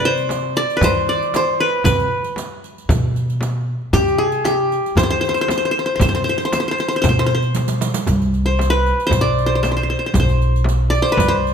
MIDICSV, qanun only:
0, 0, Header, 1, 2, 480
1, 0, Start_track
1, 0, Tempo, 518583
1, 1717, Time_signature, 4, 2, 24, 8
1, 10680, End_track
2, 0, Start_track
2, 0, Title_t, "Qanun"
2, 0, Program_c, 0, 107
2, 0, Note_on_c, 0, 71, 85
2, 0, Note_on_c, 0, 74, 74
2, 48, Note_on_c, 0, 72, 98
2, 104, Note_off_c, 0, 71, 0
2, 522, Note_off_c, 0, 74, 0
2, 525, Note_on_c, 0, 74, 96
2, 710, Note_on_c, 0, 71, 70
2, 765, Note_off_c, 0, 72, 0
2, 778, Note_on_c, 0, 72, 95
2, 834, Note_off_c, 0, 71, 0
2, 1005, Note_off_c, 0, 74, 0
2, 1009, Note_on_c, 0, 74, 79
2, 1256, Note_off_c, 0, 72, 0
2, 1260, Note_on_c, 0, 72, 89
2, 1485, Note_on_c, 0, 71, 82
2, 1540, Note_off_c, 0, 72, 0
2, 1708, Note_off_c, 0, 71, 0
2, 1712, Note_on_c, 0, 71, 81
2, 1920, Note_off_c, 0, 74, 0
2, 2727, Note_off_c, 0, 71, 0
2, 3642, Note_on_c, 0, 67, 92
2, 3873, Note_on_c, 0, 68, 84
2, 3928, Note_off_c, 0, 67, 0
2, 4119, Note_on_c, 0, 67, 86
2, 4175, Note_off_c, 0, 68, 0
2, 4603, Note_on_c, 0, 72, 95
2, 4655, Note_off_c, 0, 72, 0
2, 4659, Note_on_c, 0, 72, 73
2, 4721, Note_off_c, 0, 72, 0
2, 4725, Note_on_c, 0, 72, 77
2, 4818, Note_off_c, 0, 72, 0
2, 4822, Note_on_c, 0, 72, 68
2, 4892, Note_off_c, 0, 72, 0
2, 4896, Note_on_c, 0, 72, 72
2, 4942, Note_off_c, 0, 72, 0
2, 4946, Note_on_c, 0, 72, 59
2, 5007, Note_off_c, 0, 72, 0
2, 5010, Note_on_c, 0, 72, 71
2, 5098, Note_off_c, 0, 72, 0
2, 5102, Note_on_c, 0, 72, 60
2, 5157, Note_off_c, 0, 72, 0
2, 5161, Note_on_c, 0, 72, 65
2, 5228, Note_off_c, 0, 72, 0
2, 5232, Note_on_c, 0, 72, 57
2, 5281, Note_off_c, 0, 67, 0
2, 5284, Note_off_c, 0, 72, 0
2, 5287, Note_on_c, 0, 72, 70
2, 5355, Note_off_c, 0, 72, 0
2, 5359, Note_on_c, 0, 72, 56
2, 5419, Note_off_c, 0, 72, 0
2, 5422, Note_on_c, 0, 72, 63
2, 5509, Note_off_c, 0, 72, 0
2, 5513, Note_on_c, 0, 72, 57
2, 5570, Note_off_c, 0, 72, 0
2, 5573, Note_on_c, 0, 72, 65
2, 5631, Note_off_c, 0, 72, 0
2, 5634, Note_on_c, 0, 72, 55
2, 5686, Note_off_c, 0, 72, 0
2, 5689, Note_on_c, 0, 72, 67
2, 5774, Note_off_c, 0, 72, 0
2, 5777, Note_on_c, 0, 72, 58
2, 5822, Note_off_c, 0, 72, 0
2, 5825, Note_on_c, 0, 72, 66
2, 5900, Note_off_c, 0, 72, 0
2, 5904, Note_on_c, 0, 72, 59
2, 5967, Note_off_c, 0, 72, 0
2, 5970, Note_on_c, 0, 72, 66
2, 6042, Note_off_c, 0, 72, 0
2, 6046, Note_on_c, 0, 72, 58
2, 6105, Note_off_c, 0, 72, 0
2, 6109, Note_on_c, 0, 72, 62
2, 6178, Note_off_c, 0, 72, 0
2, 6182, Note_on_c, 0, 72, 57
2, 6210, Note_off_c, 0, 72, 0
2, 6213, Note_on_c, 0, 72, 67
2, 6290, Note_off_c, 0, 72, 0
2, 6294, Note_on_c, 0, 72, 61
2, 6369, Note_off_c, 0, 72, 0
2, 6372, Note_on_c, 0, 72, 72
2, 6440, Note_off_c, 0, 72, 0
2, 6443, Note_on_c, 0, 72, 66
2, 6491, Note_off_c, 0, 72, 0
2, 6495, Note_on_c, 0, 72, 73
2, 6557, Note_off_c, 0, 72, 0
2, 6561, Note_on_c, 0, 72, 63
2, 6653, Note_off_c, 0, 72, 0
2, 6657, Note_on_c, 0, 72, 79
2, 6720, Note_off_c, 0, 72, 0
2, 6724, Note_on_c, 0, 72, 64
2, 6795, Note_off_c, 0, 72, 0
2, 6799, Note_on_c, 0, 72, 68
2, 7776, Note_off_c, 0, 72, 0
2, 7827, Note_on_c, 0, 72, 71
2, 8054, Note_on_c, 0, 71, 79
2, 8109, Note_off_c, 0, 72, 0
2, 8392, Note_on_c, 0, 72, 82
2, 8447, Note_off_c, 0, 71, 0
2, 8526, Note_on_c, 0, 74, 85
2, 8756, Note_off_c, 0, 72, 0
2, 8760, Note_on_c, 0, 72, 73
2, 8839, Note_off_c, 0, 72, 0
2, 8843, Note_on_c, 0, 72, 52
2, 8908, Note_off_c, 0, 72, 0
2, 8911, Note_on_c, 0, 72, 60
2, 8989, Note_off_c, 0, 72, 0
2, 8992, Note_on_c, 0, 72, 46
2, 9036, Note_off_c, 0, 72, 0
2, 9039, Note_on_c, 0, 72, 53
2, 9097, Note_off_c, 0, 72, 0
2, 9100, Note_on_c, 0, 72, 45
2, 9158, Note_off_c, 0, 72, 0
2, 9162, Note_on_c, 0, 72, 51
2, 9243, Note_off_c, 0, 72, 0
2, 9246, Note_on_c, 0, 72, 46
2, 9311, Note_off_c, 0, 72, 0
2, 9315, Note_on_c, 0, 72, 55
2, 9383, Note_off_c, 0, 72, 0
2, 9386, Note_on_c, 0, 72, 46
2, 9435, Note_off_c, 0, 72, 0
2, 9438, Note_off_c, 0, 74, 0
2, 9439, Note_on_c, 0, 72, 63
2, 10090, Note_on_c, 0, 74, 89
2, 10199, Note_off_c, 0, 72, 0
2, 10203, Note_on_c, 0, 72, 83
2, 10293, Note_on_c, 0, 71, 81
2, 10348, Note_off_c, 0, 72, 0
2, 10445, Note_on_c, 0, 72, 80
2, 10500, Note_off_c, 0, 71, 0
2, 10680, Note_off_c, 0, 72, 0
2, 10680, Note_off_c, 0, 74, 0
2, 10680, End_track
0, 0, End_of_file